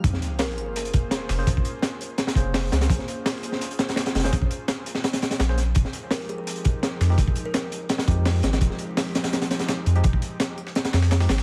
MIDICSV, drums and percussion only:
0, 0, Header, 1, 2, 480
1, 0, Start_track
1, 0, Tempo, 357143
1, 56, Time_signature, 4, 2, 24, 8
1, 15361, End_track
2, 0, Start_track
2, 0, Title_t, "Drums"
2, 53, Note_on_c, 9, 36, 113
2, 54, Note_on_c, 9, 42, 82
2, 56, Note_off_c, 9, 42, 0
2, 56, Note_on_c, 9, 42, 90
2, 180, Note_on_c, 9, 38, 51
2, 187, Note_off_c, 9, 36, 0
2, 190, Note_off_c, 9, 42, 0
2, 294, Note_on_c, 9, 42, 71
2, 297, Note_off_c, 9, 42, 0
2, 297, Note_on_c, 9, 42, 72
2, 315, Note_off_c, 9, 38, 0
2, 432, Note_off_c, 9, 42, 0
2, 520, Note_on_c, 9, 42, 86
2, 526, Note_on_c, 9, 38, 122
2, 540, Note_off_c, 9, 38, 0
2, 540, Note_on_c, 9, 38, 124
2, 540, Note_on_c, 9, 46, 81
2, 654, Note_off_c, 9, 42, 0
2, 663, Note_off_c, 9, 38, 0
2, 663, Note_on_c, 9, 38, 41
2, 674, Note_off_c, 9, 46, 0
2, 779, Note_on_c, 9, 42, 69
2, 798, Note_off_c, 9, 38, 0
2, 913, Note_off_c, 9, 42, 0
2, 1021, Note_on_c, 9, 42, 94
2, 1022, Note_off_c, 9, 42, 0
2, 1022, Note_on_c, 9, 42, 85
2, 1143, Note_off_c, 9, 42, 0
2, 1143, Note_on_c, 9, 42, 44
2, 1257, Note_off_c, 9, 42, 0
2, 1257, Note_on_c, 9, 42, 82
2, 1264, Note_on_c, 9, 36, 94
2, 1392, Note_off_c, 9, 42, 0
2, 1399, Note_off_c, 9, 36, 0
2, 1492, Note_on_c, 9, 38, 119
2, 1496, Note_on_c, 9, 42, 89
2, 1499, Note_off_c, 9, 42, 0
2, 1499, Note_on_c, 9, 42, 61
2, 1627, Note_off_c, 9, 38, 0
2, 1633, Note_off_c, 9, 42, 0
2, 1736, Note_on_c, 9, 42, 70
2, 1737, Note_on_c, 9, 38, 105
2, 1737, Note_on_c, 9, 46, 73
2, 1859, Note_off_c, 9, 38, 0
2, 1859, Note_on_c, 9, 38, 35
2, 1870, Note_off_c, 9, 42, 0
2, 1871, Note_off_c, 9, 46, 0
2, 1975, Note_on_c, 9, 36, 109
2, 1978, Note_on_c, 9, 42, 88
2, 1979, Note_off_c, 9, 42, 0
2, 1979, Note_on_c, 9, 42, 92
2, 1994, Note_off_c, 9, 38, 0
2, 2110, Note_off_c, 9, 36, 0
2, 2112, Note_on_c, 9, 36, 94
2, 2114, Note_off_c, 9, 42, 0
2, 2213, Note_on_c, 9, 42, 66
2, 2220, Note_off_c, 9, 42, 0
2, 2220, Note_on_c, 9, 42, 70
2, 2246, Note_off_c, 9, 36, 0
2, 2354, Note_off_c, 9, 42, 0
2, 2451, Note_on_c, 9, 38, 116
2, 2459, Note_off_c, 9, 38, 0
2, 2459, Note_on_c, 9, 38, 117
2, 2459, Note_on_c, 9, 42, 89
2, 2463, Note_off_c, 9, 42, 0
2, 2463, Note_on_c, 9, 42, 91
2, 2593, Note_off_c, 9, 38, 0
2, 2598, Note_off_c, 9, 42, 0
2, 2699, Note_on_c, 9, 42, 70
2, 2709, Note_off_c, 9, 42, 0
2, 2709, Note_on_c, 9, 42, 64
2, 2844, Note_off_c, 9, 42, 0
2, 2928, Note_on_c, 9, 42, 80
2, 2932, Note_on_c, 9, 38, 105
2, 2938, Note_off_c, 9, 42, 0
2, 2938, Note_on_c, 9, 42, 89
2, 3054, Note_off_c, 9, 38, 0
2, 3054, Note_on_c, 9, 38, 106
2, 3069, Note_off_c, 9, 42, 0
2, 3069, Note_on_c, 9, 42, 87
2, 3164, Note_on_c, 9, 36, 93
2, 3178, Note_off_c, 9, 42, 0
2, 3178, Note_on_c, 9, 42, 73
2, 3179, Note_off_c, 9, 42, 0
2, 3179, Note_on_c, 9, 42, 68
2, 3188, Note_off_c, 9, 38, 0
2, 3299, Note_off_c, 9, 36, 0
2, 3313, Note_off_c, 9, 42, 0
2, 3415, Note_on_c, 9, 38, 110
2, 3418, Note_off_c, 9, 38, 0
2, 3418, Note_on_c, 9, 38, 118
2, 3418, Note_on_c, 9, 42, 91
2, 3419, Note_on_c, 9, 46, 76
2, 3544, Note_off_c, 9, 38, 0
2, 3544, Note_on_c, 9, 38, 50
2, 3552, Note_off_c, 9, 42, 0
2, 3554, Note_off_c, 9, 46, 0
2, 3659, Note_off_c, 9, 38, 0
2, 3659, Note_on_c, 9, 38, 110
2, 3661, Note_on_c, 9, 42, 68
2, 3665, Note_off_c, 9, 42, 0
2, 3665, Note_on_c, 9, 42, 85
2, 3778, Note_off_c, 9, 38, 0
2, 3778, Note_on_c, 9, 38, 102
2, 3780, Note_off_c, 9, 42, 0
2, 3780, Note_on_c, 9, 42, 89
2, 3892, Note_on_c, 9, 36, 124
2, 3899, Note_off_c, 9, 42, 0
2, 3899, Note_on_c, 9, 42, 96
2, 3901, Note_off_c, 9, 42, 0
2, 3901, Note_on_c, 9, 42, 87
2, 3913, Note_off_c, 9, 38, 0
2, 4017, Note_on_c, 9, 38, 48
2, 4027, Note_off_c, 9, 36, 0
2, 4035, Note_off_c, 9, 42, 0
2, 4138, Note_on_c, 9, 42, 70
2, 4144, Note_off_c, 9, 42, 0
2, 4144, Note_on_c, 9, 42, 70
2, 4151, Note_off_c, 9, 38, 0
2, 4279, Note_off_c, 9, 42, 0
2, 4377, Note_on_c, 9, 38, 111
2, 4378, Note_on_c, 9, 42, 87
2, 4381, Note_off_c, 9, 38, 0
2, 4381, Note_on_c, 9, 38, 123
2, 4381, Note_on_c, 9, 46, 84
2, 4506, Note_off_c, 9, 38, 0
2, 4506, Note_on_c, 9, 38, 39
2, 4512, Note_off_c, 9, 42, 0
2, 4516, Note_off_c, 9, 46, 0
2, 4609, Note_on_c, 9, 42, 78
2, 4624, Note_off_c, 9, 42, 0
2, 4624, Note_on_c, 9, 42, 70
2, 4641, Note_off_c, 9, 38, 0
2, 4732, Note_on_c, 9, 38, 50
2, 4759, Note_off_c, 9, 42, 0
2, 4853, Note_on_c, 9, 42, 94
2, 4861, Note_off_c, 9, 42, 0
2, 4861, Note_on_c, 9, 42, 89
2, 4867, Note_off_c, 9, 38, 0
2, 4983, Note_off_c, 9, 42, 0
2, 4983, Note_on_c, 9, 42, 50
2, 5090, Note_off_c, 9, 42, 0
2, 5090, Note_on_c, 9, 42, 74
2, 5094, Note_on_c, 9, 38, 117
2, 5102, Note_off_c, 9, 42, 0
2, 5102, Note_on_c, 9, 42, 71
2, 5223, Note_off_c, 9, 42, 0
2, 5223, Note_on_c, 9, 42, 75
2, 5229, Note_off_c, 9, 38, 0
2, 5229, Note_on_c, 9, 38, 102
2, 5323, Note_off_c, 9, 38, 0
2, 5323, Note_on_c, 9, 38, 109
2, 5339, Note_off_c, 9, 38, 0
2, 5339, Note_off_c, 9, 42, 0
2, 5339, Note_on_c, 9, 38, 116
2, 5339, Note_on_c, 9, 42, 90
2, 5455, Note_off_c, 9, 42, 0
2, 5455, Note_on_c, 9, 42, 76
2, 5462, Note_off_c, 9, 38, 0
2, 5462, Note_on_c, 9, 38, 97
2, 5579, Note_off_c, 9, 42, 0
2, 5579, Note_on_c, 9, 42, 69
2, 5583, Note_off_c, 9, 38, 0
2, 5583, Note_on_c, 9, 38, 97
2, 5588, Note_off_c, 9, 42, 0
2, 5588, Note_on_c, 9, 42, 73
2, 5638, Note_off_c, 9, 38, 0
2, 5638, Note_off_c, 9, 42, 0
2, 5638, Note_on_c, 9, 38, 92
2, 5638, Note_on_c, 9, 42, 69
2, 5701, Note_off_c, 9, 42, 0
2, 5701, Note_on_c, 9, 42, 44
2, 5708, Note_off_c, 9, 38, 0
2, 5708, Note_on_c, 9, 38, 110
2, 5715, Note_off_c, 9, 42, 0
2, 5715, Note_on_c, 9, 42, 89
2, 5815, Note_off_c, 9, 42, 0
2, 5815, Note_on_c, 9, 42, 88
2, 5817, Note_on_c, 9, 36, 116
2, 5842, Note_off_c, 9, 38, 0
2, 5935, Note_off_c, 9, 36, 0
2, 5935, Note_on_c, 9, 36, 99
2, 5950, Note_off_c, 9, 42, 0
2, 6056, Note_on_c, 9, 42, 67
2, 6058, Note_off_c, 9, 42, 0
2, 6058, Note_on_c, 9, 42, 70
2, 6070, Note_off_c, 9, 36, 0
2, 6193, Note_off_c, 9, 42, 0
2, 6292, Note_on_c, 9, 38, 108
2, 6292, Note_on_c, 9, 42, 97
2, 6295, Note_off_c, 9, 38, 0
2, 6295, Note_off_c, 9, 42, 0
2, 6295, Note_on_c, 9, 38, 119
2, 6295, Note_on_c, 9, 42, 92
2, 6430, Note_off_c, 9, 38, 0
2, 6430, Note_off_c, 9, 42, 0
2, 6532, Note_on_c, 9, 42, 72
2, 6535, Note_off_c, 9, 42, 0
2, 6535, Note_on_c, 9, 42, 72
2, 6647, Note_on_c, 9, 38, 56
2, 6659, Note_off_c, 9, 38, 0
2, 6659, Note_on_c, 9, 38, 59
2, 6670, Note_off_c, 9, 42, 0
2, 6771, Note_on_c, 9, 42, 87
2, 6775, Note_off_c, 9, 38, 0
2, 6775, Note_on_c, 9, 38, 108
2, 6897, Note_off_c, 9, 42, 0
2, 6897, Note_on_c, 9, 42, 84
2, 6898, Note_off_c, 9, 38, 0
2, 6898, Note_on_c, 9, 38, 103
2, 7017, Note_off_c, 9, 42, 0
2, 7017, Note_on_c, 9, 42, 67
2, 7019, Note_off_c, 9, 42, 0
2, 7019, Note_on_c, 9, 42, 83
2, 7022, Note_off_c, 9, 38, 0
2, 7022, Note_on_c, 9, 38, 104
2, 7132, Note_off_c, 9, 38, 0
2, 7132, Note_on_c, 9, 38, 101
2, 7134, Note_off_c, 9, 42, 0
2, 7134, Note_on_c, 9, 42, 78
2, 7249, Note_off_c, 9, 38, 0
2, 7249, Note_on_c, 9, 38, 115
2, 7255, Note_off_c, 9, 38, 0
2, 7255, Note_off_c, 9, 42, 0
2, 7255, Note_on_c, 9, 38, 114
2, 7255, Note_on_c, 9, 42, 88
2, 7264, Note_off_c, 9, 42, 0
2, 7264, Note_on_c, 9, 42, 87
2, 7381, Note_off_c, 9, 38, 0
2, 7381, Note_on_c, 9, 38, 48
2, 7399, Note_off_c, 9, 42, 0
2, 7495, Note_on_c, 9, 42, 70
2, 7497, Note_off_c, 9, 38, 0
2, 7497, Note_on_c, 9, 38, 40
2, 7498, Note_off_c, 9, 42, 0
2, 7498, Note_on_c, 9, 42, 66
2, 7632, Note_off_c, 9, 38, 0
2, 7632, Note_off_c, 9, 42, 0
2, 7724, Note_on_c, 9, 42, 86
2, 7734, Note_off_c, 9, 42, 0
2, 7734, Note_on_c, 9, 42, 86
2, 7740, Note_on_c, 9, 36, 121
2, 7860, Note_on_c, 9, 38, 46
2, 7868, Note_off_c, 9, 42, 0
2, 7874, Note_off_c, 9, 36, 0
2, 7971, Note_on_c, 9, 42, 73
2, 7975, Note_off_c, 9, 42, 0
2, 7975, Note_on_c, 9, 42, 70
2, 7994, Note_off_c, 9, 38, 0
2, 8109, Note_off_c, 9, 42, 0
2, 8207, Note_on_c, 9, 38, 125
2, 8216, Note_off_c, 9, 38, 0
2, 8216, Note_on_c, 9, 38, 121
2, 8216, Note_on_c, 9, 42, 89
2, 8216, Note_on_c, 9, 46, 83
2, 8339, Note_off_c, 9, 38, 0
2, 8339, Note_on_c, 9, 38, 41
2, 8350, Note_off_c, 9, 42, 0
2, 8350, Note_off_c, 9, 46, 0
2, 8456, Note_on_c, 9, 42, 70
2, 8474, Note_off_c, 9, 38, 0
2, 8590, Note_off_c, 9, 42, 0
2, 8696, Note_on_c, 9, 42, 93
2, 8697, Note_off_c, 9, 42, 0
2, 8697, Note_on_c, 9, 42, 95
2, 8811, Note_off_c, 9, 42, 0
2, 8811, Note_on_c, 9, 42, 49
2, 8931, Note_off_c, 9, 42, 0
2, 8931, Note_on_c, 9, 42, 70
2, 8939, Note_off_c, 9, 42, 0
2, 8939, Note_on_c, 9, 42, 78
2, 8943, Note_on_c, 9, 36, 98
2, 9073, Note_off_c, 9, 42, 0
2, 9077, Note_off_c, 9, 36, 0
2, 9177, Note_on_c, 9, 38, 124
2, 9182, Note_on_c, 9, 42, 63
2, 9183, Note_off_c, 9, 42, 0
2, 9183, Note_on_c, 9, 42, 90
2, 9311, Note_off_c, 9, 38, 0
2, 9317, Note_off_c, 9, 42, 0
2, 9418, Note_on_c, 9, 42, 67
2, 9419, Note_on_c, 9, 38, 103
2, 9419, Note_on_c, 9, 46, 72
2, 9543, Note_off_c, 9, 38, 0
2, 9543, Note_on_c, 9, 38, 34
2, 9552, Note_off_c, 9, 42, 0
2, 9553, Note_off_c, 9, 46, 0
2, 9647, Note_on_c, 9, 36, 105
2, 9653, Note_on_c, 9, 42, 96
2, 9659, Note_off_c, 9, 42, 0
2, 9659, Note_on_c, 9, 42, 91
2, 9678, Note_off_c, 9, 38, 0
2, 9777, Note_off_c, 9, 36, 0
2, 9777, Note_on_c, 9, 36, 103
2, 9794, Note_off_c, 9, 42, 0
2, 9883, Note_on_c, 9, 42, 68
2, 9901, Note_off_c, 9, 42, 0
2, 9901, Note_on_c, 9, 42, 71
2, 9912, Note_off_c, 9, 36, 0
2, 10035, Note_off_c, 9, 42, 0
2, 10131, Note_on_c, 9, 42, 94
2, 10134, Note_off_c, 9, 42, 0
2, 10134, Note_on_c, 9, 38, 123
2, 10134, Note_on_c, 9, 42, 92
2, 10136, Note_off_c, 9, 38, 0
2, 10136, Note_on_c, 9, 38, 119
2, 10268, Note_off_c, 9, 42, 0
2, 10270, Note_off_c, 9, 38, 0
2, 10375, Note_on_c, 9, 42, 71
2, 10378, Note_off_c, 9, 42, 0
2, 10378, Note_on_c, 9, 42, 68
2, 10512, Note_off_c, 9, 42, 0
2, 10607, Note_on_c, 9, 42, 81
2, 10613, Note_on_c, 9, 38, 107
2, 10616, Note_off_c, 9, 42, 0
2, 10616, Note_on_c, 9, 42, 92
2, 10730, Note_off_c, 9, 38, 0
2, 10730, Note_on_c, 9, 38, 111
2, 10744, Note_off_c, 9, 42, 0
2, 10744, Note_on_c, 9, 42, 83
2, 10856, Note_on_c, 9, 36, 101
2, 10857, Note_off_c, 9, 42, 0
2, 10857, Note_on_c, 9, 42, 70
2, 10860, Note_off_c, 9, 42, 0
2, 10860, Note_on_c, 9, 42, 73
2, 10864, Note_off_c, 9, 38, 0
2, 10990, Note_off_c, 9, 36, 0
2, 10994, Note_off_c, 9, 42, 0
2, 11093, Note_on_c, 9, 46, 82
2, 11095, Note_on_c, 9, 38, 120
2, 11095, Note_on_c, 9, 42, 89
2, 11096, Note_off_c, 9, 38, 0
2, 11096, Note_on_c, 9, 38, 113
2, 11218, Note_off_c, 9, 38, 0
2, 11218, Note_on_c, 9, 38, 49
2, 11227, Note_off_c, 9, 46, 0
2, 11229, Note_off_c, 9, 42, 0
2, 11329, Note_on_c, 9, 42, 88
2, 11333, Note_off_c, 9, 42, 0
2, 11333, Note_on_c, 9, 42, 69
2, 11339, Note_off_c, 9, 38, 0
2, 11339, Note_on_c, 9, 38, 115
2, 11462, Note_off_c, 9, 42, 0
2, 11462, Note_on_c, 9, 42, 79
2, 11466, Note_off_c, 9, 38, 0
2, 11466, Note_on_c, 9, 38, 108
2, 11570, Note_on_c, 9, 36, 118
2, 11575, Note_off_c, 9, 42, 0
2, 11575, Note_on_c, 9, 42, 89
2, 11576, Note_off_c, 9, 42, 0
2, 11576, Note_on_c, 9, 42, 94
2, 11601, Note_off_c, 9, 38, 0
2, 11699, Note_on_c, 9, 38, 44
2, 11705, Note_off_c, 9, 36, 0
2, 11711, Note_off_c, 9, 42, 0
2, 11806, Note_on_c, 9, 42, 73
2, 11816, Note_off_c, 9, 42, 0
2, 11816, Note_on_c, 9, 42, 70
2, 11834, Note_off_c, 9, 38, 0
2, 11951, Note_off_c, 9, 42, 0
2, 12056, Note_on_c, 9, 38, 124
2, 12057, Note_off_c, 9, 38, 0
2, 12057, Note_on_c, 9, 38, 122
2, 12057, Note_on_c, 9, 42, 96
2, 12057, Note_on_c, 9, 46, 84
2, 12182, Note_off_c, 9, 38, 0
2, 12182, Note_on_c, 9, 38, 41
2, 12192, Note_off_c, 9, 42, 0
2, 12192, Note_off_c, 9, 46, 0
2, 12297, Note_on_c, 9, 42, 70
2, 12298, Note_off_c, 9, 42, 0
2, 12298, Note_on_c, 9, 42, 87
2, 12301, Note_off_c, 9, 38, 0
2, 12301, Note_on_c, 9, 38, 113
2, 12415, Note_off_c, 9, 38, 0
2, 12415, Note_off_c, 9, 42, 0
2, 12415, Note_on_c, 9, 38, 120
2, 12415, Note_on_c, 9, 42, 92
2, 12537, Note_off_c, 9, 42, 0
2, 12537, Note_on_c, 9, 42, 79
2, 12539, Note_off_c, 9, 42, 0
2, 12539, Note_on_c, 9, 42, 92
2, 12543, Note_off_c, 9, 38, 0
2, 12543, Note_on_c, 9, 38, 114
2, 12654, Note_off_c, 9, 42, 0
2, 12654, Note_on_c, 9, 42, 79
2, 12656, Note_off_c, 9, 38, 0
2, 12656, Note_on_c, 9, 38, 107
2, 12777, Note_off_c, 9, 42, 0
2, 12777, Note_on_c, 9, 42, 86
2, 12778, Note_off_c, 9, 42, 0
2, 12778, Note_on_c, 9, 42, 71
2, 12779, Note_off_c, 9, 38, 0
2, 12779, Note_on_c, 9, 38, 103
2, 12892, Note_off_c, 9, 42, 0
2, 12892, Note_on_c, 9, 42, 73
2, 12899, Note_off_c, 9, 38, 0
2, 12899, Note_on_c, 9, 38, 97
2, 13013, Note_off_c, 9, 42, 0
2, 13013, Note_on_c, 9, 42, 87
2, 13017, Note_off_c, 9, 38, 0
2, 13017, Note_off_c, 9, 42, 0
2, 13017, Note_on_c, 9, 38, 116
2, 13017, Note_on_c, 9, 42, 90
2, 13018, Note_off_c, 9, 38, 0
2, 13018, Note_on_c, 9, 38, 104
2, 13152, Note_off_c, 9, 38, 0
2, 13152, Note_off_c, 9, 42, 0
2, 13256, Note_on_c, 9, 42, 71
2, 13381, Note_off_c, 9, 42, 0
2, 13381, Note_on_c, 9, 42, 46
2, 13489, Note_off_c, 9, 42, 0
2, 13489, Note_on_c, 9, 42, 80
2, 13496, Note_off_c, 9, 42, 0
2, 13496, Note_on_c, 9, 42, 88
2, 13499, Note_on_c, 9, 36, 114
2, 13618, Note_off_c, 9, 36, 0
2, 13618, Note_on_c, 9, 36, 103
2, 13630, Note_off_c, 9, 42, 0
2, 13736, Note_on_c, 9, 42, 71
2, 13753, Note_off_c, 9, 36, 0
2, 13871, Note_off_c, 9, 42, 0
2, 13975, Note_on_c, 9, 38, 124
2, 13975, Note_on_c, 9, 42, 87
2, 14109, Note_off_c, 9, 42, 0
2, 14110, Note_off_c, 9, 38, 0
2, 14215, Note_on_c, 9, 42, 71
2, 14336, Note_on_c, 9, 38, 59
2, 14349, Note_off_c, 9, 42, 0
2, 14452, Note_on_c, 9, 42, 90
2, 14460, Note_off_c, 9, 38, 0
2, 14460, Note_on_c, 9, 38, 100
2, 14461, Note_off_c, 9, 42, 0
2, 14461, Note_on_c, 9, 42, 76
2, 14574, Note_off_c, 9, 42, 0
2, 14574, Note_on_c, 9, 42, 80
2, 14578, Note_off_c, 9, 38, 0
2, 14578, Note_on_c, 9, 38, 106
2, 14692, Note_off_c, 9, 38, 0
2, 14692, Note_on_c, 9, 38, 108
2, 14692, Note_on_c, 9, 46, 75
2, 14698, Note_off_c, 9, 38, 0
2, 14698, Note_on_c, 9, 38, 111
2, 14699, Note_off_c, 9, 42, 0
2, 14699, Note_on_c, 9, 42, 86
2, 14817, Note_off_c, 9, 38, 0
2, 14817, Note_off_c, 9, 46, 0
2, 14817, Note_on_c, 9, 38, 110
2, 14817, Note_on_c, 9, 46, 75
2, 14833, Note_off_c, 9, 42, 0
2, 14931, Note_off_c, 9, 38, 0
2, 14931, Note_off_c, 9, 46, 0
2, 14931, Note_on_c, 9, 38, 106
2, 14931, Note_on_c, 9, 46, 74
2, 14933, Note_on_c, 9, 42, 76
2, 14939, Note_off_c, 9, 38, 0
2, 14939, Note_on_c, 9, 38, 116
2, 15057, Note_off_c, 9, 38, 0
2, 15057, Note_on_c, 9, 38, 41
2, 15059, Note_off_c, 9, 38, 0
2, 15059, Note_off_c, 9, 46, 0
2, 15059, Note_on_c, 9, 38, 107
2, 15059, Note_on_c, 9, 46, 75
2, 15068, Note_off_c, 9, 42, 0
2, 15175, Note_off_c, 9, 38, 0
2, 15175, Note_off_c, 9, 46, 0
2, 15175, Note_on_c, 9, 38, 105
2, 15175, Note_on_c, 9, 46, 73
2, 15179, Note_off_c, 9, 38, 0
2, 15179, Note_on_c, 9, 38, 104
2, 15189, Note_on_c, 9, 42, 75
2, 15298, Note_off_c, 9, 38, 0
2, 15298, Note_off_c, 9, 46, 0
2, 15298, Note_on_c, 9, 38, 105
2, 15298, Note_on_c, 9, 46, 74
2, 15324, Note_off_c, 9, 42, 0
2, 15361, Note_off_c, 9, 38, 0
2, 15361, Note_off_c, 9, 46, 0
2, 15361, End_track
0, 0, End_of_file